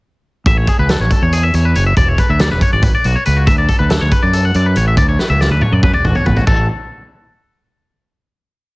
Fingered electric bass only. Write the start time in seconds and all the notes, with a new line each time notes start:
0.46 A1
0.79 C#2
1.00 A1
1.22 E2
1.54 E2
1.76 F#1
1.97 E1
2.29 D2
2.51 E1
2.73 G#1
3.05 B1
3.27 C#2
3.47 D2
3.80 D2
4.01 D2
4.23 F#2
4.55 F#2
4.76 A1
4.97 D2
5.30 C#2
5.51 D2
5.72 F#2
6.04 A1
6.26 A1
6.47 A1